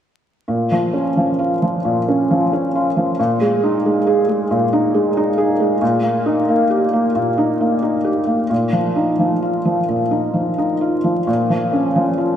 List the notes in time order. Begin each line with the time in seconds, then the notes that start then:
0.48 A#2
0.72 F3
0.93 C#4
1.17 F3
1.39 F4
1.62 F3
1.85 A#2
2.08 C#4
2.31 F3
2.53 C#4
2.75 F4
2.97 F3
3.19 A#2
3.41 G#3
3.63 D#4
3.86 G#3
4.07 G#4
4.29 G#3
4.51 A#2
4.73 D#4
4.94 G#3
5.17 D#4
5.38 G#4
5.60 G#3
5.81 A#2
6.03 A#3
6.26 D#4
6.49 A#3
6.70 G4
6.93 A#3
7.15 A#2
7.38 D#4
7.61 A#3
7.83 D#4
8.04 G4
8.27 A#3
8.50 A#2
8.72 F3
8.96 D#4
9.19 F3
9.42 F4
9.65 F3
9.89 A#2
10.11 D#4
10.34 F3
10.58 D#4
10.81 F4
11.04 F3
11.27 A#2
11.50 F3
11.73 C#4
11.96 F3
12.18 F4